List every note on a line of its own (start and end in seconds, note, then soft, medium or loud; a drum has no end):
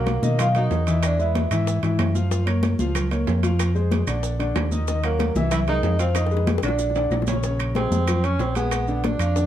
0.00 0.17 B1 medium
0.00 0.17 F#3 medium
0.00 0.36 A#3 medium
0.00 0.17 F#4 medium
0.00 0.17 A#4 medium
0.00 0.41 A#4 medium
0.06 high bongo medium
0.06 high conga loud
0.06 high timbale medium
0.06 low timbale medium
0.06 maracas soft
0.22 0.67 B2 medium
0.22 0.49 D#3 medium
0.22 0.49 D#4 medium
0.22 0.49 D#5 medium
0.22 high bongo soft
0.22 high conga loud
0.22 maracas medium
0.39 0.47 F4 medium
0.39 0.47 F5 loud
0.39 high bongo medium
0.39 high conga soft
0.39 low conga medium
0.39 high timbale loud
0.39 claves medium
0.39 maracas medium
0.55 0.81 F#3 medium
0.55 1.00 D#4 medium
0.55 0.82 F#4 medium
0.55 0.82 A#4 medium
0.55 1.05 D#5 loud
0.55 high bongo soft
0.55 high conga soft
0.55 low conga medium
0.55 high timbale medium
0.55 maracas soft
0.70 1.45 E2 medium
0.70 high bongo soft
0.70 low bongo medium
0.70 high conga soft
0.70 low timbale medium
0.70 maracas soft
0.87 1.13 E3 medium
0.87 1.13 E4 medium
0.87 1.14 E5 medium
0.87 high bongo soft
0.87 high timbale medium
0.87 maracas medium
1.03 1.19 D4 medium
1.03 1.20 D5 medium
1.03 high bongo medium
1.03 high conga soft
1.03 high timbale loud
1.03 claves medium
1.03 maracas medium
1.19 1.45 G#3 medium
1.19 1.50 E4 medium
1.19 1.45 G#4 medium
1.19 1.45 B4 medium
1.19 1.49 E5 medium
1.19 high conga soft
1.19 maracas soft
1.35 high bongo medium
1.35 high conga loud
1.35 high timbale medium
1.35 low timbale medium
1.35 maracas soft
1.50 1.80 G#2 loud
1.50 1.78 E3 medium
1.50 1.78 E4 medium
1.50 1.78 E5 medium
1.50 high bongo soft
1.50 high timbale medium
1.50 claves medium
1.50 maracas medium
1.67 high bongo medium
1.67 high conga soft
1.67 maracas medium
1.82 1.98 G#2 medium
1.82 2.09 E3 medium
1.82 2.10 E4 medium
1.82 2.10 E5 medium
1.82 high bongo soft
1.82 high conga soft
1.82 high timbale medium
1.82 maracas soft
1.99 2.73 F#2 medium
1.99 high bongo soft
1.99 low bongo medium
1.99 high conga medium
1.99 high timbale loud
1.99 low timbale medium
1.99 claves medium
1.99 maracas soft
2.15 2.28 F3 medium
2.15 2.28 F4 medium
2.15 2.28 F5 medium
2.15 high bongo soft
2.15 high conga medium
2.15 maracas medium
2.31 2.44 F3 medium
2.31 2.44 F4 medium
2.31 2.44 F5 medium
2.31 high bongo medium
2.31 high conga soft
2.31 maracas medium
2.46 2.73 A#3 medium
2.46 2.73 A#4 medium
2.46 2.73 C#5 medium
2.46 high conga soft
2.46 high timbale medium
2.46 claves medium
2.46 maracas soft
2.63 high bongo medium
2.63 high conga loud
2.63 high timbale medium
2.63 low timbale medium
2.63 maracas soft
2.79 3.24 C#2 medium
2.79 3.06 F3 medium
2.79 3.06 F4 medium
2.79 3.06 F5 medium
2.79 high bongo soft
2.79 high conga medium
2.79 maracas medium
2.95 high bongo medium
2.95 high conga soft
2.95 low conga medium
2.95 high timbale loud
2.95 claves medium
2.95 maracas medium
3.11 3.37 A#3 medium
3.11 3.38 A#4 medium
3.11 3.38 C#5 medium
3.11 high bongo soft
3.11 high conga soft
3.11 high timbale medium
3.11 maracas soft
3.27 4.02 F2 loud
3.27 high bongo soft
3.27 low bongo medium
3.27 low timbale medium
3.27 maracas soft
3.43 3.69 F3 medium
3.43 3.69 F4 medium
3.43 3.70 F5 medium
3.43 high bongo soft
3.43 high conga medium
3.43 high timbale medium
3.43 maracas medium
3.59 high bongo medium
3.59 high conga soft
3.59 high timbale loud
3.59 claves medium
3.59 maracas medium
3.75 4.01 G#3 medium
3.75 4.02 G#4 medium
3.75 4.02 C5 medium
3.75 high conga soft
3.75 maracas soft
3.91 high bongo medium
3.91 high conga loud
3.91 high timbale medium
3.91 low timbale medium
3.91 maracas soft
4.07 4.52 A#1 medium
4.07 4.33 D3 medium
4.07 4.34 D4 medium
4.07 4.34 D5 medium
4.07 high bongo soft
4.07 high timbale medium
4.07 claves medium
4.07 maracas medium
4.23 high bongo medium
4.23 high conga soft
4.23 maracas medium
4.39 4.66 D3 medium
4.39 4.66 D4 medium
4.39 4.66 D5 medium
4.39 high bongo soft
4.39 high conga soft
4.39 high timbale medium
4.39 maracas soft
4.54 5.29 D#2 loud
4.54 high bongo soft
4.54 low bongo medium
4.54 high conga medium
4.54 high timbale loud
4.54 low timbale loud
4.54 claves medium
4.54 maracas soft
4.72 4.85 D#3 medium
4.72 4.85 D#4 medium
4.72 4.85 D#5 medium
4.72 high bongo soft
4.72 high conga medium
4.72 maracas medium
4.88 5.01 D#3 medium
4.88 5.01 D#4 medium
4.88 5.02 D#5 medium
4.88 high bongo medium
4.88 high conga soft
4.88 maracas medium
5.03 5.30 F#3 medium
5.03 5.33 A#3 medium
5.03 5.30 F#4 medium
5.03 5.30 A#4 medium
5.03 5.34 A#4 loud
5.03 high conga soft
5.03 high timbale medium
5.03 claves medium
5.03 maracas soft
5.19 high bongo medium
5.19 high conga loud
5.19 high timbale medium
5.19 low timbale medium
5.19 maracas soft
5.35 5.80 C2 medium
5.35 5.62 E3 medium
5.35 5.62 E4 medium
5.35 5.63 E5 medium
5.35 high bongo soft
5.35 high conga loud
5.35 maracas medium
5.51 5.59 E4 loud
5.51 5.60 E5 loud
5.51 high bongo medium
5.51 high conga soft
5.51 low conga medium
5.51 high timbale medium
5.51 claves medium
5.51 maracas medium
5.67 5.94 G#3 medium
5.67 5.98 D#4 loud
5.67 5.94 G#4 medium
5.67 5.94 A#4 medium
5.67 5.99 D#5 loud
5.67 high bongo soft
5.67 high conga soft
5.67 low conga medium
5.67 high timbale medium
5.67 maracas soft
5.82 6.57 F2 loud
5.82 high bongo soft
5.82 low bongo medium
5.82 high conga soft
5.82 low timbale medium
5.82 maracas soft
5.99 6.26 F3 medium
5.99 6.07 C4 medium
5.99 6.26 F4 medium
5.99 6.09 C5 medium
5.99 6.26 F5 medium
5.99 high bongo soft
5.99 high timbale medium
5.99 maracas medium
6.15 6.45 D#4 medium
6.15 6.46 D#5 medium
6.15 high bongo loud
6.15 high conga soft
6.15 high timbale medium
6.15 claves medium
6.15 maracas medium
6.26 high bongo medium
6.31 6.58 G#3 medium
6.31 6.58 G#4 medium
6.31 6.58 B4 medium
6.31 high conga soft
6.31 maracas soft
6.37 high bongo medium
6.47 high bongo medium
6.47 high conga loud
6.47 high timbale medium
6.47 low timbale medium
6.47 maracas soft
6.58 high bongo medium
6.62 7.08 A#1 medium
6.62 6.90 D3 medium
6.62 6.90 D4 medium
6.62 7.09 D4 medium
6.62 6.90 D5 medium
6.62 7.09 D5 medium
6.62 high timbale medium
6.62 claves medium
6.62 maracas medium
6.68 low bongo loud
6.79 low bongo medium
6.79 high conga soft
6.79 maracas medium
6.90 low bongo medium
6.95 7.22 D3 medium
6.95 7.22 D4 medium
6.95 7.22 D5 medium
6.95 high conga soft
6.95 high timbale medium
6.95 maracas soft
7.10 7.86 A#1 loud
7.10 low bongo medium
7.10 high conga medium
7.10 high timbale medium
7.10 claves medium
7.10 maracas soft
7.22 low bongo loud
7.27 7.41 C#3 medium
7.27 7.41 C#4 medium
7.27 7.41 C#5 medium
7.27 high conga medium
7.27 low timbale medium
7.27 maracas medium
7.33 low bongo medium
7.43 7.70 C#3 medium
7.43 7.70 C#4 medium
7.43 7.70 C#5 medium
7.43 high bongo medium
7.43 high conga soft
7.43 maracas medium
7.59 high conga soft
7.59 high timbale medium
7.59 claves medium
7.59 maracas soft
7.75 8.02 G#3 medium
7.75 8.26 C4 medium
7.75 8.02 G#4 medium
7.75 8.02 G#5 medium
7.75 high bongo medium
7.75 high conga medium
7.75 high timbale medium
7.75 low timbale medium
7.75 maracas soft
7.91 8.36 F2 medium
7.91 high conga loud
7.91 maracas medium
8.07 8.21 F3 medium
8.07 8.21 F4 medium
8.07 8.21 F5 medium
8.07 high bongo medium
8.07 high conga soft
8.07 low conga medium
8.07 high timbale medium
8.07 claves medium
8.07 maracas medium
8.23 8.50 C#4 medium
8.23 8.41 C#4 loud
8.23 8.50 C#5 medium
8.23 8.50 C#6 medium
8.23 high bongo soft
8.23 high conga soft
8.23 high timbale medium
8.23 maracas soft
8.39 9.14 A#1 medium
8.39 8.56 C4 medium
8.39 high bongo soft
8.39 low bongo medium
8.39 high conga soft
8.39 low timbale medium
8.39 maracas soft
8.55 8.82 G#3 medium
8.55 9.06 B3 medium
8.55 8.82 G#4 medium
8.55 8.83 G#5 medium
8.55 high bongo soft
8.55 high conga medium
8.55 high timbale medium
8.55 maracas medium
8.71 high bongo medium
8.71 high conga soft
8.71 high timbale loud
8.71 claves medium
8.71 maracas medium
8.88 9.14 D3 medium
8.88 9.14 D4 medium
8.88 9.15 D5 medium
8.88 high conga soft
8.88 maracas soft
9.04 9.46 D4 medium
9.04 high bongo medium
9.04 high conga medium
9.04 high timbale medium
9.04 low timbale medium
9.04 maracas soft
9.19 9.46 F2 medium
9.19 9.33 F3 medium
9.19 9.33 F4 medium
9.19 9.34 F5 medium
9.19 high bongo soft
9.19 high timbale medium
9.19 claves medium
9.19 maracas medium
9.36 9.46 D3 medium
9.36 9.46 D4 medium
9.36 9.46 D5 medium
9.36 high bongo medium
9.36 high conga soft
9.36 maracas medium